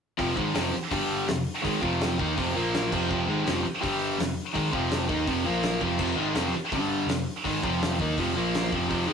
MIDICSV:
0, 0, Header, 1, 7, 480
1, 0, Start_track
1, 0, Key_signature, -4, "minor"
1, 0, Tempo, 363196
1, 242, Time_signature, 4, 2, 24, 8
1, 12068, End_track
2, 0, Start_track
2, 0, Title_t, "Overdriven electric guitar"
2, 0, Program_c, 0, 29
2, 233, Note_on_c, 0, 41, 91
2, 233, Note_on_c, 0, 48, 86
2, 238, Note_on_c, 0, 53, 101
2, 462, Note_off_c, 0, 41, 0
2, 467, Note_on_c, 0, 44, 87
2, 472, Note_off_c, 0, 48, 0
2, 475, Note_off_c, 0, 53, 0
2, 484, Note_on_c, 0, 51, 88
2, 485, Note_on_c, 0, 56, 97
2, 706, Note_off_c, 0, 44, 0
2, 708, Note_off_c, 0, 51, 0
2, 708, Note_off_c, 0, 56, 0
2, 712, Note_on_c, 0, 41, 80
2, 713, Note_on_c, 0, 48, 96
2, 714, Note_on_c, 0, 53, 100
2, 936, Note_off_c, 0, 41, 0
2, 954, Note_off_c, 0, 48, 0
2, 954, Note_off_c, 0, 53, 0
2, 1203, Note_on_c, 0, 43, 80
2, 1203, Note_on_c, 0, 50, 89
2, 1213, Note_on_c, 0, 55, 97
2, 1681, Note_off_c, 0, 43, 0
2, 1681, Note_off_c, 0, 50, 0
2, 1686, Note_off_c, 0, 55, 0
2, 1686, Note_on_c, 0, 41, 64
2, 1690, Note_on_c, 0, 48, 64
2, 1882, Note_off_c, 0, 41, 0
2, 1884, Note_off_c, 0, 48, 0
2, 2146, Note_on_c, 0, 44, 92
2, 2150, Note_on_c, 0, 51, 94
2, 2166, Note_on_c, 0, 56, 108
2, 2386, Note_off_c, 0, 51, 0
2, 2387, Note_off_c, 0, 44, 0
2, 2391, Note_on_c, 0, 48, 94
2, 2392, Note_on_c, 0, 41, 87
2, 2394, Note_off_c, 0, 56, 0
2, 2400, Note_on_c, 0, 53, 103
2, 2878, Note_off_c, 0, 41, 0
2, 2878, Note_off_c, 0, 48, 0
2, 2882, Note_off_c, 0, 53, 0
2, 2897, Note_on_c, 0, 58, 96
2, 2898, Note_on_c, 0, 51, 87
2, 2900, Note_on_c, 0, 63, 109
2, 3128, Note_on_c, 0, 41, 84
2, 3129, Note_off_c, 0, 51, 0
2, 3130, Note_off_c, 0, 58, 0
2, 3132, Note_off_c, 0, 63, 0
2, 3134, Note_on_c, 0, 48, 94
2, 3149, Note_on_c, 0, 53, 105
2, 3354, Note_off_c, 0, 53, 0
2, 3357, Note_off_c, 0, 48, 0
2, 3362, Note_on_c, 0, 46, 87
2, 3366, Note_off_c, 0, 41, 0
2, 3369, Note_on_c, 0, 53, 87
2, 3372, Note_on_c, 0, 58, 96
2, 3844, Note_off_c, 0, 46, 0
2, 3848, Note_off_c, 0, 53, 0
2, 3849, Note_off_c, 0, 58, 0
2, 3849, Note_on_c, 0, 41, 100
2, 3862, Note_on_c, 0, 48, 91
2, 3873, Note_on_c, 0, 53, 108
2, 4062, Note_off_c, 0, 41, 0
2, 4077, Note_off_c, 0, 53, 0
2, 4078, Note_on_c, 0, 41, 93
2, 4080, Note_off_c, 0, 48, 0
2, 4093, Note_on_c, 0, 53, 103
2, 4096, Note_on_c, 0, 48, 99
2, 4322, Note_off_c, 0, 41, 0
2, 4327, Note_on_c, 0, 44, 86
2, 4330, Note_off_c, 0, 53, 0
2, 4331, Note_off_c, 0, 48, 0
2, 4337, Note_on_c, 0, 51, 96
2, 4340, Note_on_c, 0, 56, 100
2, 4561, Note_off_c, 0, 44, 0
2, 4566, Note_on_c, 0, 41, 85
2, 4572, Note_off_c, 0, 51, 0
2, 4572, Note_off_c, 0, 56, 0
2, 4578, Note_on_c, 0, 48, 99
2, 4578, Note_on_c, 0, 53, 104
2, 4796, Note_off_c, 0, 41, 0
2, 4812, Note_off_c, 0, 48, 0
2, 4812, Note_off_c, 0, 53, 0
2, 5031, Note_on_c, 0, 43, 82
2, 5043, Note_on_c, 0, 50, 93
2, 5047, Note_on_c, 0, 55, 97
2, 5518, Note_off_c, 0, 43, 0
2, 5524, Note_off_c, 0, 50, 0
2, 5526, Note_off_c, 0, 55, 0
2, 5533, Note_on_c, 0, 41, 72
2, 5535, Note_on_c, 0, 48, 66
2, 5729, Note_off_c, 0, 41, 0
2, 5730, Note_off_c, 0, 48, 0
2, 6001, Note_on_c, 0, 44, 82
2, 6006, Note_on_c, 0, 51, 94
2, 6016, Note_on_c, 0, 56, 98
2, 6234, Note_off_c, 0, 51, 0
2, 6236, Note_off_c, 0, 44, 0
2, 6239, Note_on_c, 0, 48, 92
2, 6241, Note_on_c, 0, 41, 93
2, 6245, Note_off_c, 0, 56, 0
2, 6250, Note_on_c, 0, 53, 92
2, 6708, Note_off_c, 0, 48, 0
2, 6713, Note_on_c, 0, 51, 89
2, 6719, Note_off_c, 0, 53, 0
2, 6722, Note_off_c, 0, 41, 0
2, 6722, Note_on_c, 0, 63, 104
2, 6724, Note_on_c, 0, 58, 97
2, 6946, Note_off_c, 0, 51, 0
2, 6951, Note_on_c, 0, 41, 88
2, 6951, Note_on_c, 0, 48, 102
2, 6962, Note_off_c, 0, 58, 0
2, 6962, Note_off_c, 0, 63, 0
2, 6968, Note_on_c, 0, 53, 97
2, 7178, Note_off_c, 0, 53, 0
2, 7194, Note_on_c, 0, 53, 85
2, 7196, Note_off_c, 0, 41, 0
2, 7196, Note_off_c, 0, 48, 0
2, 7201, Note_on_c, 0, 46, 83
2, 7209, Note_on_c, 0, 58, 93
2, 7673, Note_on_c, 0, 41, 92
2, 7676, Note_off_c, 0, 53, 0
2, 7678, Note_off_c, 0, 46, 0
2, 7683, Note_on_c, 0, 48, 95
2, 7684, Note_off_c, 0, 58, 0
2, 7695, Note_on_c, 0, 53, 96
2, 7897, Note_off_c, 0, 41, 0
2, 7907, Note_off_c, 0, 48, 0
2, 7913, Note_on_c, 0, 41, 93
2, 7921, Note_off_c, 0, 53, 0
2, 7923, Note_on_c, 0, 48, 91
2, 7937, Note_on_c, 0, 53, 103
2, 8134, Note_off_c, 0, 41, 0
2, 8139, Note_on_c, 0, 44, 81
2, 8148, Note_off_c, 0, 48, 0
2, 8149, Note_off_c, 0, 53, 0
2, 8153, Note_on_c, 0, 51, 92
2, 8155, Note_on_c, 0, 56, 112
2, 8382, Note_off_c, 0, 44, 0
2, 8387, Note_off_c, 0, 51, 0
2, 8387, Note_on_c, 0, 41, 81
2, 8392, Note_on_c, 0, 48, 87
2, 8395, Note_off_c, 0, 56, 0
2, 8400, Note_on_c, 0, 53, 99
2, 8626, Note_off_c, 0, 41, 0
2, 8634, Note_off_c, 0, 48, 0
2, 8637, Note_off_c, 0, 53, 0
2, 8883, Note_on_c, 0, 43, 79
2, 8887, Note_on_c, 0, 50, 92
2, 8892, Note_on_c, 0, 55, 94
2, 9357, Note_off_c, 0, 43, 0
2, 9359, Note_off_c, 0, 50, 0
2, 9361, Note_off_c, 0, 55, 0
2, 9367, Note_on_c, 0, 41, 61
2, 9368, Note_on_c, 0, 48, 76
2, 9558, Note_off_c, 0, 41, 0
2, 9559, Note_off_c, 0, 48, 0
2, 9838, Note_on_c, 0, 44, 90
2, 9838, Note_on_c, 0, 51, 95
2, 9842, Note_on_c, 0, 56, 101
2, 10073, Note_off_c, 0, 44, 0
2, 10073, Note_off_c, 0, 51, 0
2, 10075, Note_off_c, 0, 56, 0
2, 10084, Note_on_c, 0, 41, 84
2, 10092, Note_on_c, 0, 48, 93
2, 10098, Note_on_c, 0, 53, 103
2, 10555, Note_off_c, 0, 41, 0
2, 10559, Note_off_c, 0, 48, 0
2, 10562, Note_off_c, 0, 53, 0
2, 10564, Note_on_c, 0, 51, 97
2, 10573, Note_on_c, 0, 58, 89
2, 10575, Note_on_c, 0, 63, 97
2, 10795, Note_off_c, 0, 51, 0
2, 10799, Note_off_c, 0, 58, 0
2, 10801, Note_off_c, 0, 63, 0
2, 10801, Note_on_c, 0, 41, 82
2, 10814, Note_on_c, 0, 48, 93
2, 10822, Note_on_c, 0, 53, 100
2, 11027, Note_off_c, 0, 53, 0
2, 11033, Note_off_c, 0, 41, 0
2, 11036, Note_off_c, 0, 48, 0
2, 11041, Note_on_c, 0, 46, 92
2, 11043, Note_on_c, 0, 53, 103
2, 11060, Note_on_c, 0, 58, 92
2, 11512, Note_off_c, 0, 46, 0
2, 11513, Note_off_c, 0, 53, 0
2, 11521, Note_off_c, 0, 58, 0
2, 11528, Note_on_c, 0, 41, 92
2, 11529, Note_on_c, 0, 53, 102
2, 11535, Note_on_c, 0, 48, 101
2, 11733, Note_off_c, 0, 48, 0
2, 11735, Note_off_c, 0, 41, 0
2, 11748, Note_off_c, 0, 53, 0
2, 11749, Note_on_c, 0, 48, 93
2, 11751, Note_on_c, 0, 41, 93
2, 11764, Note_on_c, 0, 53, 108
2, 11978, Note_off_c, 0, 48, 0
2, 11982, Note_off_c, 0, 41, 0
2, 11983, Note_on_c, 0, 51, 98
2, 11987, Note_on_c, 0, 44, 91
2, 11992, Note_off_c, 0, 53, 0
2, 11997, Note_on_c, 0, 56, 100
2, 12068, Note_off_c, 0, 44, 0
2, 12068, Note_off_c, 0, 51, 0
2, 12068, Note_off_c, 0, 56, 0
2, 12068, End_track
3, 0, Start_track
3, 0, Title_t, "Picked electric bass"
3, 0, Program_c, 1, 34
3, 245, Note_on_c, 1, 29, 92
3, 468, Note_off_c, 1, 29, 0
3, 498, Note_on_c, 1, 32, 100
3, 716, Note_off_c, 1, 32, 0
3, 731, Note_on_c, 1, 29, 89
3, 953, Note_off_c, 1, 29, 0
3, 1211, Note_on_c, 1, 31, 85
3, 1659, Note_off_c, 1, 31, 0
3, 1711, Note_on_c, 1, 29, 76
3, 1926, Note_off_c, 1, 29, 0
3, 2177, Note_on_c, 1, 32, 93
3, 2400, Note_off_c, 1, 32, 0
3, 2414, Note_on_c, 1, 29, 101
3, 2863, Note_off_c, 1, 29, 0
3, 2895, Note_on_c, 1, 39, 104
3, 3120, Note_off_c, 1, 39, 0
3, 3145, Note_on_c, 1, 29, 87
3, 3366, Note_off_c, 1, 29, 0
3, 3384, Note_on_c, 1, 34, 93
3, 3829, Note_off_c, 1, 34, 0
3, 3864, Note_on_c, 1, 29, 89
3, 4086, Note_off_c, 1, 29, 0
3, 4108, Note_on_c, 1, 29, 98
3, 4328, Note_off_c, 1, 29, 0
3, 4366, Note_on_c, 1, 32, 103
3, 4578, Note_off_c, 1, 32, 0
3, 4601, Note_on_c, 1, 29, 92
3, 4815, Note_off_c, 1, 29, 0
3, 5071, Note_on_c, 1, 31, 92
3, 5513, Note_off_c, 1, 31, 0
3, 5552, Note_on_c, 1, 29, 83
3, 5770, Note_off_c, 1, 29, 0
3, 6020, Note_on_c, 1, 32, 104
3, 6243, Note_off_c, 1, 32, 0
3, 6262, Note_on_c, 1, 29, 101
3, 6706, Note_off_c, 1, 29, 0
3, 6739, Note_on_c, 1, 39, 93
3, 6961, Note_off_c, 1, 39, 0
3, 6975, Note_on_c, 1, 29, 81
3, 7198, Note_off_c, 1, 29, 0
3, 7222, Note_on_c, 1, 34, 94
3, 7664, Note_off_c, 1, 34, 0
3, 7692, Note_on_c, 1, 29, 89
3, 7915, Note_off_c, 1, 29, 0
3, 7922, Note_on_c, 1, 29, 95
3, 8134, Note_off_c, 1, 29, 0
3, 8142, Note_on_c, 1, 32, 97
3, 8378, Note_off_c, 1, 32, 0
3, 8394, Note_on_c, 1, 29, 93
3, 8624, Note_off_c, 1, 29, 0
3, 8889, Note_on_c, 1, 31, 89
3, 9333, Note_off_c, 1, 31, 0
3, 9341, Note_on_c, 1, 29, 76
3, 9575, Note_off_c, 1, 29, 0
3, 9854, Note_on_c, 1, 32, 93
3, 10072, Note_off_c, 1, 32, 0
3, 10096, Note_on_c, 1, 29, 105
3, 10535, Note_off_c, 1, 29, 0
3, 10571, Note_on_c, 1, 39, 92
3, 10789, Note_off_c, 1, 39, 0
3, 10810, Note_on_c, 1, 29, 93
3, 11028, Note_off_c, 1, 29, 0
3, 11063, Note_on_c, 1, 34, 100
3, 11497, Note_off_c, 1, 34, 0
3, 11536, Note_on_c, 1, 29, 95
3, 11750, Note_off_c, 1, 29, 0
3, 11770, Note_on_c, 1, 29, 103
3, 11987, Note_off_c, 1, 29, 0
3, 12022, Note_on_c, 1, 32, 104
3, 12068, Note_off_c, 1, 32, 0
3, 12068, End_track
4, 0, Start_track
4, 0, Title_t, "Muted distorted electric guitar strokes"
4, 971, Note_on_c, 9, 29, 53
4, 1103, Note_off_c, 9, 29, 0
4, 4811, Note_on_c, 9, 29, 60
4, 4943, Note_off_c, 9, 29, 0
4, 8652, Note_on_c, 9, 29, 55
4, 8784, Note_off_c, 9, 29, 0
4, 12068, End_track
5, 0, Start_track
5, 0, Title_t, "Muted overdriven electric guitar strokes"
5, 951, Note_on_c, 9, 29, 60
5, 1084, Note_off_c, 9, 29, 0
5, 4812, Note_on_c, 9, 29, 61
5, 4944, Note_off_c, 9, 29, 0
5, 8642, Note_on_c, 9, 29, 57
5, 8774, Note_off_c, 9, 29, 0
5, 12068, End_track
6, 0, Start_track
6, 0, Title_t, "Muted picked electric bass strokes"
6, 987, Note_on_c, 9, 29, 40
6, 1119, Note_off_c, 9, 29, 0
6, 4841, Note_on_c, 9, 29, 41
6, 4973, Note_off_c, 9, 29, 0
6, 8642, Note_on_c, 9, 29, 44
6, 8775, Note_off_c, 9, 29, 0
6, 12068, End_track
7, 0, Start_track
7, 0, Title_t, "Drums"
7, 249, Note_on_c, 9, 36, 101
7, 253, Note_on_c, 9, 46, 58
7, 381, Note_off_c, 9, 36, 0
7, 385, Note_off_c, 9, 46, 0
7, 491, Note_on_c, 9, 36, 113
7, 623, Note_off_c, 9, 36, 0
7, 725, Note_on_c, 9, 46, 66
7, 737, Note_on_c, 9, 38, 118
7, 857, Note_off_c, 9, 46, 0
7, 869, Note_off_c, 9, 38, 0
7, 1210, Note_on_c, 9, 36, 115
7, 1210, Note_on_c, 9, 46, 68
7, 1342, Note_off_c, 9, 36, 0
7, 1342, Note_off_c, 9, 46, 0
7, 1690, Note_on_c, 9, 46, 71
7, 1702, Note_on_c, 9, 38, 116
7, 1822, Note_off_c, 9, 46, 0
7, 1834, Note_off_c, 9, 38, 0
7, 2177, Note_on_c, 9, 36, 105
7, 2181, Note_on_c, 9, 46, 61
7, 2309, Note_off_c, 9, 36, 0
7, 2313, Note_off_c, 9, 46, 0
7, 2416, Note_on_c, 9, 36, 97
7, 2548, Note_off_c, 9, 36, 0
7, 2655, Note_on_c, 9, 46, 60
7, 2666, Note_on_c, 9, 38, 116
7, 2787, Note_off_c, 9, 46, 0
7, 2799, Note_off_c, 9, 38, 0
7, 2901, Note_on_c, 9, 36, 109
7, 3033, Note_off_c, 9, 36, 0
7, 3143, Note_on_c, 9, 36, 111
7, 3150, Note_on_c, 9, 46, 62
7, 3275, Note_off_c, 9, 36, 0
7, 3282, Note_off_c, 9, 46, 0
7, 3621, Note_on_c, 9, 46, 61
7, 3632, Note_on_c, 9, 38, 123
7, 3753, Note_off_c, 9, 46, 0
7, 3765, Note_off_c, 9, 38, 0
7, 3864, Note_on_c, 9, 36, 100
7, 3865, Note_on_c, 9, 49, 101
7, 3997, Note_off_c, 9, 36, 0
7, 3997, Note_off_c, 9, 49, 0
7, 4107, Note_on_c, 9, 36, 103
7, 4239, Note_off_c, 9, 36, 0
7, 4583, Note_on_c, 9, 46, 63
7, 4595, Note_on_c, 9, 38, 121
7, 4716, Note_off_c, 9, 46, 0
7, 4727, Note_off_c, 9, 38, 0
7, 5065, Note_on_c, 9, 46, 61
7, 5069, Note_on_c, 9, 36, 109
7, 5197, Note_off_c, 9, 46, 0
7, 5201, Note_off_c, 9, 36, 0
7, 5546, Note_on_c, 9, 46, 69
7, 5558, Note_on_c, 9, 38, 112
7, 5678, Note_off_c, 9, 46, 0
7, 5690, Note_off_c, 9, 38, 0
7, 6018, Note_on_c, 9, 46, 57
7, 6021, Note_on_c, 9, 36, 102
7, 6150, Note_off_c, 9, 46, 0
7, 6153, Note_off_c, 9, 36, 0
7, 6256, Note_on_c, 9, 36, 106
7, 6388, Note_off_c, 9, 36, 0
7, 6489, Note_on_c, 9, 46, 60
7, 6501, Note_on_c, 9, 38, 116
7, 6621, Note_off_c, 9, 46, 0
7, 6633, Note_off_c, 9, 38, 0
7, 6731, Note_on_c, 9, 36, 109
7, 6863, Note_off_c, 9, 36, 0
7, 6971, Note_on_c, 9, 36, 108
7, 6975, Note_on_c, 9, 46, 58
7, 7103, Note_off_c, 9, 36, 0
7, 7107, Note_off_c, 9, 46, 0
7, 7439, Note_on_c, 9, 46, 59
7, 7451, Note_on_c, 9, 38, 114
7, 7572, Note_off_c, 9, 46, 0
7, 7583, Note_off_c, 9, 38, 0
7, 7681, Note_on_c, 9, 36, 100
7, 7814, Note_off_c, 9, 36, 0
7, 7912, Note_on_c, 9, 57, 97
7, 7919, Note_on_c, 9, 36, 104
7, 8044, Note_off_c, 9, 57, 0
7, 8052, Note_off_c, 9, 36, 0
7, 8391, Note_on_c, 9, 46, 61
7, 8403, Note_on_c, 9, 38, 120
7, 8523, Note_off_c, 9, 46, 0
7, 8535, Note_off_c, 9, 38, 0
7, 8882, Note_on_c, 9, 36, 112
7, 8887, Note_on_c, 9, 46, 60
7, 9015, Note_off_c, 9, 36, 0
7, 9019, Note_off_c, 9, 46, 0
7, 9369, Note_on_c, 9, 46, 65
7, 9381, Note_on_c, 9, 38, 122
7, 9501, Note_off_c, 9, 46, 0
7, 9513, Note_off_c, 9, 38, 0
7, 9848, Note_on_c, 9, 36, 95
7, 9857, Note_on_c, 9, 46, 61
7, 9980, Note_off_c, 9, 36, 0
7, 9989, Note_off_c, 9, 46, 0
7, 10091, Note_on_c, 9, 36, 113
7, 10223, Note_off_c, 9, 36, 0
7, 10334, Note_on_c, 9, 46, 71
7, 10346, Note_on_c, 9, 38, 111
7, 10466, Note_off_c, 9, 46, 0
7, 10478, Note_off_c, 9, 38, 0
7, 10569, Note_on_c, 9, 36, 104
7, 10701, Note_off_c, 9, 36, 0
7, 10806, Note_on_c, 9, 46, 63
7, 10810, Note_on_c, 9, 36, 106
7, 10938, Note_off_c, 9, 46, 0
7, 10942, Note_off_c, 9, 36, 0
7, 11292, Note_on_c, 9, 46, 65
7, 11304, Note_on_c, 9, 38, 118
7, 11424, Note_off_c, 9, 46, 0
7, 11436, Note_off_c, 9, 38, 0
7, 11531, Note_on_c, 9, 36, 95
7, 11664, Note_off_c, 9, 36, 0
7, 11772, Note_on_c, 9, 36, 106
7, 11774, Note_on_c, 9, 46, 53
7, 11904, Note_off_c, 9, 36, 0
7, 11906, Note_off_c, 9, 46, 0
7, 12068, End_track
0, 0, End_of_file